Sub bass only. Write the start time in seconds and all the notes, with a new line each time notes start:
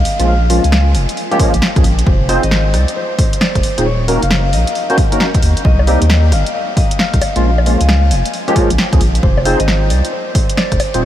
0.19 A#1
0.64 C#2
0.95 F1
1.54 A#1
1.76 C#2
1.84 A#1
2.07 F1
2.43 G#1
2.74 C2
3.55 F1
3.78 D#1
4.23 F#1
4.53 A#1
5.43 D#2
5.65 C2
6.02 D#2
6.32 G1
7.14 C2
7.36 A#1
7.81 C#2
8.11 F1
8.70 A#1
8.93 C#2
9.01 A#1
9.23 F1
9.60 G#1
9.90 C2
10.72 F1
10.94 D#1